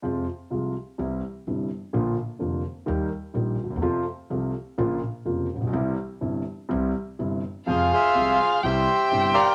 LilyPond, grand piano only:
\new Staff \with { instrumentName = "Grand piano" } { \clef bass \time 4/4 \key f \minor \tempo 4 = 126 <f, c f aes f'>8 r8 <c, c f aes f'>8 r8 <c, c e g e'>8 r8 <g,, g, c e g e'>8 r8 | <bes,, bes, d f bes f'>8 r8 <f,, f, d f bes f'>8 r8 <ees, ees g bes g'>8 r8 <bes,, bes, ees g bes g'>8 r32 d,32 ees,32 e,32 | <f, c f a f'>8 r8 <c, c f a f'>8 r8 <bes,, bes, des f bes f'>8 r8 <f,, f, des f bes f'>8 r32 a,,32 bes,,32 b,,32 | <c, c e g e'>8 r8 <g,, g, c e g e'>8 r8 <c, c e g e'>8 r8 <g,, g, c e g e'>8 r8 |
<f, c f aes f'>8 r8 <c, c f aes f'>8 r8 <c, c e g e'>8 r8 <g,, g, c e g e'>8 r8 | }